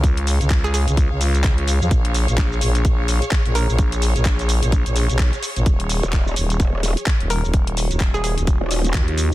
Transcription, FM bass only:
X:1
M:4/4
L:1/16
Q:"Swing 16ths" 1/4=128
K:Ebm
V:1 name="FM bass" clef=bass
D,,3 D,,4 D,,2 D,,3 D,,3 F,, | B,,,3 B,,,3 B,,,2 B,,,3 z2 B,,,2 B,,,- | B,,,3 B,,,4 B,,,2 B,,,2 C,,2 z2 B,,, | z6 E,,,2 z4 z E,,,2 E,,,- |
E,,,3 E,,,4 E,,,2 z3 E,,3 z |]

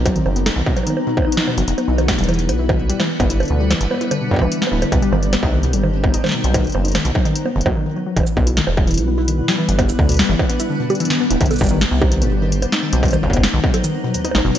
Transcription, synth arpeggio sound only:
X:1
M:4/4
L:1/16
Q:1/4=148
K:Em
V:1 name="Synth arpeggio sound" clef=bass
F, ^D, z B, ^D D, B,, F, D, z B,, ^D,, D D B,, F, | z B, E ^D, B,, G, E, z B, E D, B,, G, E, z B, | E D, B,, G, E, z B, E D, B,, G, E, z B, E D, | B,, G, _E, z B, _E E, B,, G, E, z B, E E, B,, G, |
^D, z B, ^D D, B,, F, D, z B, D, F, D, D, F, F, | E, z B, E ^D, B,, G, E, z B, E D, B,, G, E, z | B, E D, B,, G, E, z B, E D, B,, G, E, z B, E | _E, B,, G, E, z B, _E E, B,, G, E, z B, E E, B,, |
F, ^D, z B, ^D D, B,, F, D, z B,, ^D,, D D B,, F, |]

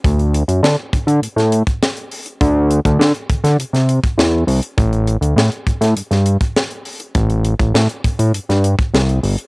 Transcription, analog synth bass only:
X:1
M:4/4
L:1/16
Q:1/4=101
K:Ador
V:1 name="Analog synth bass" clef=bass
D,,3 F,, D, z D, D, A,, A,,2 z4 z | D,,3 D,, D, z D, D, C, C,2 z E,,2 C,, z | A,,,3 D,, A,, z A,, A,, G,, G,,2 z4 z | A,,,3 A,,, A,, z A,, A,, G,, G,,2 z C,,2 G,,, z |]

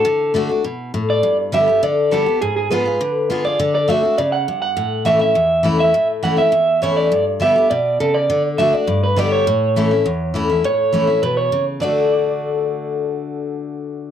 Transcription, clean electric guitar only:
X:1
M:4/4
L:1/8
Q:1/4=204
K:D
V:1 name="Clean electric guitar"
A2 z4 z d- | d z e2 d2 A2 | ^G G B4- B d- | d d e2 d f2 f- |
f2 e e3 z e- | e z f e3 c d- | d z e2 d2 A d- | d z e d2 B d c- |
c6 z2 | c4 B c2 z | d8- | d8 |]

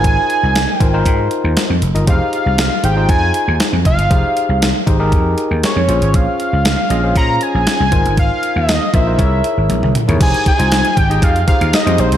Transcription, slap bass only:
X:1
M:4/4
L:1/16
Q:1/4=118
K:Fm
V:1 name="Slap bass" clef=bass
A,,, z2 C,,2 z A,,,2 A,,2 z E,, z F,, F,,, G,,, | F,,, z2 C,,2 z A,,,2 F,,2 z E,, z F,, F,,, G,,, | F,,, z2 C,,2 z A,,,2 F,,2 z E,, z F,, B,,, A,,, | B,,, z2 D,,2 z B,,,2 B,,2 z B,,, z C,, A,,, G,,, |
A,,, z2 E,,2 z B,,,2 C,,2 z A,,, B,,, C,, z E,, | F,,, z2 C,,2 z A,,,2 F,,2 z E,, z F,, B,,, C,, |]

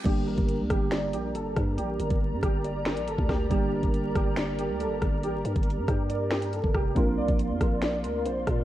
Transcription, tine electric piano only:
X:1
M:4/4
L:1/8
Q:1/4=139
K:Gm
V:1 name="Tine electric piano"
[G,B,DG]8- | [G,B,DG]8 | [G,B,DG]8- | [G,B,DG]8 |
[B,CDF]8 |]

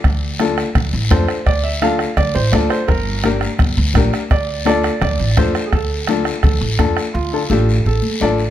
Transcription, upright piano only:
X:1
M:4/4
L:1/8
Q:1/4=169
K:Dm
V:1 name="Upright piano"
z2 [DFA] z3 [DFA] z | z2 [DFA] z3 [DFA] z | z2 [DGB] z3 [DGB] z | z2 [DFA] z3 [DFc] z |
z2 [DFA] z3 [DFA] z | z [DFA] [DFG] z3 [DFA] z |]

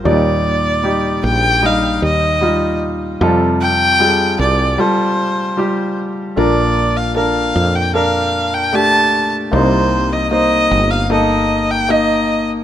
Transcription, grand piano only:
X:1
M:4/4
L:1/8
Q:1/4=76
K:Bb
V:1 name="Grand piano"
[F,G,Ed]2 [G,EG]2 [G,Ee]2 [G,EF]2 | [G,FA]2 [G,F_A=A]2 [G,FA]2 [G,FG]2 | [DAB]2 [DAB]2 [DAB]2 [A,DG]2 | [B,Ec]2 [B,Ec]2 [B,EA]2 [B,Ee]2 |]
V:2 name="Grand piano" clef=bass
B,,3 z4 z | C,3 z4 z | [B,,F,]3 z4 z | [C,G,]3 z4 z |]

